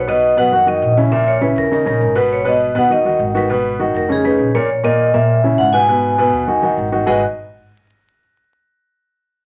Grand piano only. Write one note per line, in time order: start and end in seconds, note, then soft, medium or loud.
0.07 0.32 B2 medium
0.07 0.32 B3 medium
0.07 0.32 B4 medium
0.37 0.49 B2 medium
0.37 0.50 B3 medium
0.37 0.50 B4 medium
0.52 0.64 D#3 medium
0.52 0.65 D#4 medium
0.52 0.65 F#4 medium
0.66 0.91 D#3 medium
0.66 0.92 D#4 medium
0.66 0.91 F#4 medium
0.97 1.09 C#3 medium
0.97 1.09 C#4 medium
0.97 1.09 E4 medium
1.11 1.36 A#2 medium
1.11 1.36 A#3 medium
1.11 1.36 A#4 medium
1.41 1.66 C#3 medium
1.41 1.66 C#4 medium
1.41 1.66 E4 medium
1.72 1.84 C#3 medium
1.72 1.84 C#4 medium
1.72 1.84 D#4 medium
1.86 2.10 C#3 medium
1.86 2.11 C#4 medium
1.86 2.11 D#4 medium
2.15 2.40 B2 medium
2.15 2.40 B3 medium
2.15 2.40 B4 medium
2.44 2.69 B2 medium
2.44 2.70 B3 medium
2.44 2.70 B4 medium
2.75 2.87 B2 medium
2.75 2.87 B3 medium
2.75 2.88 B4 medium
2.90 3.02 D#3 medium
2.90 3.03 D#4 medium
2.90 3.03 F#4 medium
3.05 3.30 D#3 medium
3.05 3.30 D#4 medium
3.05 3.30 F#4 medium
3.34 3.47 D#3 medium
3.34 3.47 D#4 medium
3.34 3.47 F#4 medium
3.50 3.74 B2 medium
3.50 3.74 B3 medium
3.50 3.75 B4 medium
3.79 4.04 D#3 medium
3.79 4.04 D#4 medium
3.79 4.04 F#4 medium
4.09 4.21 C#3 medium
4.09 4.22 C#4 medium
4.09 4.22 D#4 medium
4.24 4.49 C#3 medium
4.24 4.49 C#4 medium
4.24 4.49 D#4 medium
4.54 4.67 A#2 medium
4.54 4.67 A#3 medium
4.54 4.67 A#4 medium
4.84 5.08 A#2 medium
4.84 5.09 A#3 medium
4.84 5.09 A#4 medium
5.14 5.38 A#2 medium
5.14 5.38 A#3 medium
5.14 5.38 A#4 medium
5.44 5.68 C#3 medium
5.44 5.68 C#4 medium
5.44 5.68 E4 medium
5.73 5.86 B2 medium
5.73 5.86 B3 medium
5.73 5.86 B4 medium
5.88 6.13 B2 medium
5.88 6.13 B3 medium
5.88 6.13 B4 medium
6.18 6.43 B2 medium
6.18 6.43 B3 medium
6.18 6.43 B4 medium
6.47 6.60 D#3 medium
6.47 6.60 D#4 medium
6.47 6.60 F#4 medium
6.63 6.87 D#3 medium
6.63 6.87 D#4 medium
6.63 6.87 F#4 medium
6.92 7.05 D#3 medium
6.92 7.05 D#4 medium
6.92 7.05 F#4 medium
7.06 7.21 G#3 medium
7.06 7.21 D#4 medium
7.06 7.21 F#4 medium
7.06 7.21 G#4 medium
7.06 7.21 B4 medium
7.06 7.21 D#5 medium